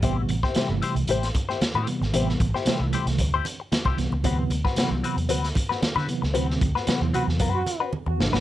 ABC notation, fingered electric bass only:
X:1
M:4/4
L:1/16
Q:1/4=114
K:Ador
V:1 name="Fingered electric bass" clef=bass
A,,,2 A,,, z2 G,,, z C,, A,,,2 z3 A,, z ^G,,, | A,,,2 A,,, z2 C,, z C,, D,,2 z3 C,, C,, ^C,, | D,,2 D,, z2 C,, z E,, D,,2 z3 D, z ^C,, | D,,2 D,, z2 E,, z E,, F,,2 z3 E,, G,,, ^G,,, |]